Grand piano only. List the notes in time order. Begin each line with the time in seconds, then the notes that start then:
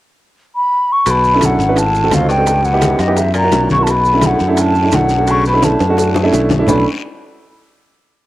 1.34 C#4 D4 E4 A4
1.68 C#4 D4 E4 B4
2.03 C4 D#4 F#4 A4
2.37 C4 D#4 F#4 A4
2.73 B3 D#4 E4 G4
3.07 B3 D#4 E4 G4
3.43 A#3 C#4 E4 F#4
3.78 A#3 C#4 E4 F#4
4.13 A3 C#4 D4 E4
4.48 A3 C#4 D4 E4
4.83 A3 C#4 D4 E4
5.18 A3 C#4 D4 F#4
5.53 A3 C#4 D4 E4
5.89 A3 C#4 D4 F#4
6.23 A3 C#4 D4 E4
6.59 A3 C#4 D4 E4
6.68 A3 C#4 D4 E4